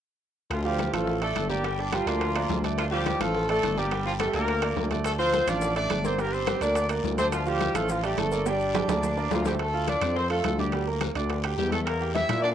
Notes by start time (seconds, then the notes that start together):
0.50 D2 F3 F4, high bongo, high conga, high timbale, long guiro
0.65 F3 G3 F4 G4 F5, high bongo, high conga
0.79 high bongo, high conga, high timbale, short guiro
0.93 A1 F3 A3 F4 A4 F5, high conga, high timbale, short guiro
1.07 high bongo, high conga, long guiro
1.21 A3 A4 D5, high bongo, high conga, high timbale
1.35 G1, high bongo, low bongo, high conga, high timbale, short guiro
1.50 G3 A#3 G4 A#4 D5, high bongo, high conga, short guiro
1.63 G3 G4 G5, high bongo, high conga, high timbale, long guiro
1.78 D4 D5, high bongo, high conga
1.92 F3 G3 F4 G4 G5, high bongo, high conga, high timbale, short guiro
2.06 D2 F3 A#3 F4 A#4 D5, high conga, high timbale, short guiro
2.21 high bongo, high conga, high timbale, long guiro
2.35 A#3 A#4 D5, high bongo, high conga, high timbale
2.49 D2, high bongo, low bongo, high conga, low timbale, short guiro
2.63 A3 A4 D5, high bongo, high conga, high timbale, short guiro
2.78 F3 F4, high bongo, high conga, high timbale, long guiro
2.92 F3 G3 F4 G4 F5, high bongo, high conga
3.06 high bongo, high conga, high timbale, short guiro
3.20 A1 F3 A3 F4 A4 F5, high conga, high timbale, short guiro
3.35 high bongo, high conga, long guiro
3.49 A3 A4 D5, high bongo, high conga, high timbale
3.62 G1, high bongo, low bongo, high conga, high timbale, short guiro
3.77 G3 A#3 G4 A#4 D5, high bongo, high conga, short guiro
3.91 G3 G4 G5, high bongo, high conga, high timbale, long guiro
4.05 F3 F4, high bongo, high conga
4.20 G3 A3 G4 A4 G5, high bongo, high conga, high timbale, short guiro
4.34 D2 A#3 A#4 D5, high conga, high timbale, short guiro
4.48 high bongo, high conga, high timbale, long guiro
4.62 A#3 A#4 D5, high bongo, high conga, high timbale
4.76 D2, high bongo, high conga, low timbale, short guiro
4.91 A3 A4 D5, low bongo, high conga, high timbale, short guiro
5.04 A3 A4, high bongo, high timbale, long guiro, maracas
5.19 F3 C4 F4 C5 F5, high bongo, high conga, maracas
5.33 high bongo, high conga, high timbale, short guiro, maracas
5.47 A1 F3 D4 F4 D5 F5, high conga, high timbale, short guiro, maracas
5.61 high bongo, high conga, long guiro, maracas
5.76 A3 D4 A4 D5, high bongo, high conga, high timbale, maracas
5.90 G1, high bongo, low bongo, high conga, high timbale, low timbale, short guiro, maracas
6.04 A#3 C4 A#4 C5 D5, high bongo, high conga, short guiro, maracas
6.18 G3 A#3 G4 A#4 G5, high bongo, high conga, high timbale, long guiro, maracas
6.33 C4 C5, high bongo, high conga, maracas
6.47 G3 G4 G5, high bongo, high conga, high timbale, short guiro, maracas
6.61 D2 A#3 D4 A#4 D5, high conga, high timbale, short guiro, maracas
6.75 high bongo, high conga, high timbale, long guiro, maracas
6.89 A#3 A#4 D5, high bongo, high conga, high timbale, maracas
7.04 D2, high bongo, low bongo, high conga, short guiro, maracas
7.18 A3 C4 A4 C5 D5, high bongo, high conga, high timbale, short guiro, maracas
7.32 F3 F4, high bongo, high conga, high timbale, long guiro, maracas
7.46 F3 G3 F4 G4 F5, high bongo, high conga, maracas
7.60 high bongo, high conga, high timbale, short guiro, maracas
7.75 A1 F3 A3 F4 A4 F5, high conga, high timbale, short guiro, maracas
7.89 F3 F4, high bongo, high conga, long guiro, maracas
8.03 G3 A3 G4 A4 D5, high bongo, high conga, high timbale, maracas
8.17 G1 A3 A4, high bongo, low bongo, high conga, high timbale, low timbale, short guiro, maracas
8.31 A#3 A#4 D5, high bongo, short guiro, maracas
8.46 G3 D4 G4 D5 G5, high bongo, high timbale, long guiro, maracas
8.60 high bongo, high conga, maracas
8.74 G3 G4 G5, high bongo, high conga, low timbale, short guiro, maracas
8.88 D2 A#3 A#4 D5, high bongo, low timbale, short guiro, maracas
9.03 low timbale, long guiro, maracas
9.17 A#3 A#4 D5, high bongo, high conga, maracas
9.30 D2 F3 F4, low bongo, high conga, low timbale, short guiro, maracas
9.45 G3 A3 G4 A4 C5, low bongo, high conga, low timbale, short guiro, maracas
9.59 A3 A4, high bongo, high timbale, long guiro
9.74 F4 F5, high bongo, high conga
9.88 D4 D5, high bongo, high conga, high timbale, short guiro
10.01 F2 C4 C5, high conga, high timbale, short guiro
10.16 C4 C5, high bongo, high conga, long guiro
10.30 A3 F4 A4 F5, high bongo, high conga, high timbale
10.44 D2, high bongo, low bongo, high conga, high timbale, low timbale, short guiro
10.59 G3 D4 G4 D5, high bongo, high conga, short guiro
10.72 G3 G4, high bongo, high timbale, long guiro
10.87 A#3 A#4, high bongo, high conga
11.01 high bongo, high conga, high timbale, short guiro
11.15 D2 D4 D5, high conga, high timbale, short guiro
11.30 high bongo, high conga, high timbale, long guiro
11.44 G4 G5, high bongo, high conga, high timbale
11.58 E2 G3 G4, high bongo, low bongo, high conga, short guiro
11.72 A3 E4 A4 E5, high bongo, high conga, high timbale, short guiro
11.86 A#3 A#4, high bongo, high timbale, long guiro
12.01 G4 G5, high bongo, high conga
12.14 E4 E5, high bongo, high conga, high timbale, short guiro
12.29 A#2 E4 E5, high conga, high timbale, short guiro
12.42 D4 D5, high bongo, high conga, long guiro